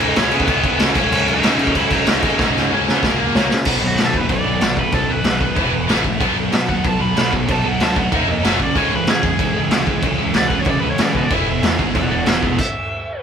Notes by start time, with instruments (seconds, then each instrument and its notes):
Already playing: distorted electric guitar C#3 E3 G#3 C#4
0.01 picked electric bass C#2, overdriven electric guitar D#4, crash
0.16 picked electric bass C#2, overdriven electric guitar C#4, snare, crash
0.30 distorted electric guitar C#3 E3 G#3 C#4, picked electric bass C#3, crash
0.35 overdriven electric guitar B3
0.40 kick
0.48 picked electric bass C#2, overdriven electric guitar B3, kick, crash
0.64 kick, crash
0.78 picked electric bass C#2, distorted electric guitar C#3 E3 G#3 C#4, snare, crash
0.95 picked electric bass C#2, distorted electric guitar F#2 C#3 F#3 A#3 C#4, kick, crash
0.99 overdriven electric guitar C#4
1.12 picked electric bass C#2, crash
1.28 picked electric bass C#2, overdriven electric guitar D#4, crash
1.42 picked electric bass C#2, distorted electric guitar F#2 C#3 F#3 A#3 C#4, snare, crash
1.59 picked electric bass C#3, overdriven electric guitar D#4, crash
1.67 kick
1.75 picked electric bass C#2, overdriven electric guitar E4, kick, crash
1.90 distorted electric guitar C#3 F#3 A#3 C#4, overdriven electric guitar D#4, kick, crash
2.07 picked electric bass C#2, overdriven electric guitar D#4, snare, crash
2.22 distorted electric guitar F#2 C#3 F#3 A#3, picked electric bass C#3, overdriven electric guitar D#4, kick, crash
2.26 distorted electric guitar C#4
2.39 picked electric bass C#2, kick, snare
2.56 picked electric bass C#2, snare
2.70 picked electric bass C#2, distorted electric guitar F#2 C#3 F#3 A#3 C#4
2.75 overdriven electric guitar C#4
2.88 picked electric bass C#3, overdriven electric guitar B3, snare
3.03 picked electric bass C#2, kick, snare
3.08 overdriven electric guitar A#3
3.19 distorted electric guitar C#3 F#3 A#3 C#4
3.35 picked electric bass C#2, snare
3.40 overdriven electric guitar A#3
3.50 picked electric bass C#3, snare
3.65 picked electric bass B1, distorted electric guitar B2 D#3 F#3 B3 D#4 B4, kick, crash
3.82 picked electric bass B1, distorted electric guitar B2 D#3 F#3
3.87 overdriven electric guitar F#4
3.98 distorted electric guitar B2 D#3 F#3, picked electric bass B2, snare, crash
4.04 overdriven electric guitar A4
4.13 picked electric bass D#2, distorted electric guitar B2 D#3 F#3 B3 D#4 B4, kick
4.17 overdriven electric guitar B4
4.29 picked electric bass B1, distorted electric guitar B2 D#3 F#3, overdriven electric guitar D5, kick, crash
4.44 picked electric bass B1, distorted electric guitar B2 D#3 F#3
4.60 picked electric bass B1, distorted electric guitar B2 D#3 F#3, snare, crash
4.77 picked electric bass B1, distorted electric guitar B2 D#3 F#3, overdriven electric guitar B4, kick
4.92 picked electric bass B1, distorted electric guitar B2 D#3 F#3 B3 D#4 B4, overdriven electric guitar A4, kick, crash
5.10 distorted electric guitar B2 D#3 F#3, overdriven electric guitar B4
5.23 picked electric bass B1, distorted electric guitar B2 D#3 F#3, snare, crash
5.40 distorted electric guitar B2 D#3 F#3 B3 D#4 B4, kick
5.55 picked electric bass E1, distorted electric guitar E2 B2 E3 B3 E4, kick, crash
5.59 distorted electric guitar B4
5.71 picked electric bass E1, distorted electric guitar E2 B2 E3 B3
5.87 picked electric bass A1, distorted electric guitar A2 E3 A3, snare, crash
5.92 distorted electric guitar E4
6.04 picked electric bass A#1, distorted electric guitar A2 E3, kick
6.20 picked electric bass B1, distorted electric guitar B2 F#3 B3 D#4, kick, crash
6.35 picked electric bass B1, distorted electric guitar B2 F#3
6.51 picked electric bass B2, distorted electric guitar B2 F#3, snare, crash
6.67 picked electric bass D#2, distorted electric guitar B2 F#3 B3 D#4, overdriven electric guitar F#5, kick
6.72 distorted electric guitar B2
6.84 picked electric bass B1, distorted electric guitar B2 F#3, overdriven electric guitar A5, kick, crash
6.99 picked electric bass B1, distorted electric guitar B2 F#3, overdriven electric guitar B5
7.15 picked electric bass B1, distorted electric guitar B2 F#3, snare, crash
7.31 picked electric bass B1, distorted electric guitar B2 F#3, kick
7.48 picked electric bass B1, distorted electric guitar B2 F#3 B3, overdriven electric guitar A5, kick, crash
7.52 distorted electric guitar D#4
7.64 distorted electric guitar B2 F#3, overdriven electric guitar F#5
7.80 picked electric bass D2, distorted electric guitar B2 F#3, snare, crash
7.84 overdriven electric guitar A5
7.95 distorted electric guitar B2 F#3 B3 D#4, overdriven electric guitar F#5, kick
8.12 picked electric bass D#2, distorted electric guitar D#3 A#3 D#4 A#4, overdriven electric guitar E5, kick, crash
8.26 picked electric bass F2, distorted electric guitar D#3 A#3
8.31 overdriven electric guitar D#5
8.42 picked electric bass F#1, distorted electric guitar F#2 C#3 F#3 C#4 F#4 C#5, snare, crash
8.48 overdriven electric guitar E5
8.59 picked electric bass B1, distorted electric guitar F#2 C#3 F#3 C#4, kick
8.64 overdriven electric guitar D5
8.75 picked electric bass C#2, distorted electric guitar C#3 E3 G#3 C#4 G#4, overdriven electric guitar C#5, kick, crash
8.91 picked electric bass C#2, distorted electric guitar C#3 E3 G#3
8.95 overdriven electric guitar B4
9.07 picked electric bass C#3, distorted electric guitar C#3 E3 G#3, overdriven electric guitar G#4, snare, crash
9.22 picked electric bass E2, distorted electric guitar C#3 E3 G#3 C#4 G#4, kick
9.39 picked electric bass C#2, distorted electric guitar C#3 E3 G#3, kick, crash
9.56 picked electric bass C#2, distorted electric guitar C#3 E3 G#3
9.71 picked electric bass C#2, distorted electric guitar C#3 E3 G#3, snare, crash
9.87 picked electric bass C#2, distorted electric guitar C#3 E3 G#3, kick
10.02 picked electric bass C#2, distorted electric guitar C#3 E3 G#3 C#4 G#4, kick, crash
10.18 distorted electric guitar C#3 E3 G#3
10.34 picked electric bass C#2, distorted electric guitar C#3 E3 G#3, overdriven electric guitar D5, snare, crash
10.48 distorted electric guitar G#3 C#4 G#4, overdriven electric guitar B4, kick
10.53 distorted electric guitar C#3 E3 G#3
10.59 overdriven electric guitar C#5
10.65 picked electric bass C#3, distorted electric guitar G#3, kick, crash
10.69 distorted electric guitar C#3 E3, overdriven electric guitar D5
10.80 picked electric bass C#2, distorted electric guitar C#3 G#3, overdriven electric guitar B4
10.85 distorted electric guitar E3
10.91 overdriven electric guitar C#5
10.98 distorted electric guitar C#3 E3 G#3, picked electric bass C#3, overdriven electric guitar D5, snare, crash
11.12 picked electric bass B2, distorted electric guitar C#3 E3, overdriven electric guitar B4, kick
11.16 distorted electric guitar G#3
11.23 overdriven electric guitar D5
11.30 picked electric bass E1, distorted electric guitar E2 B2 E3 B3 E4 G#4, kick, crash
11.34 overdriven electric guitar E5
11.46 picked electric bass E1, distorted electric guitar E2 B2 E3 B3
11.62 picked electric bass E2, distorted electric guitar E2 B2 E3 B3, snare, crash
11.79 picked electric bass G#1, distorted electric guitar E2 B2 E3 B3 E4 G#4, kick
11.95 picked electric bass E1, distorted electric guitar E2 B2 E3 B3, overdriven electric guitar D5 F#5, kick, crash
12.10 picked electric bass E1, distorted electric guitar E2 B2 E3 B3, overdriven electric guitar D5 F#5
12.25 picked electric bass E1, distorted electric guitar E2 B2 E3 B3, overdriven electric guitar G#4, snare, crash
12.30 overdriven electric guitar E5
12.43 picked electric bass E1, distorted electric guitar E2 B2 E3 B3, overdriven electric guitar G#4 E5, kick
12.59 overdriven electric guitar E5, kick, crash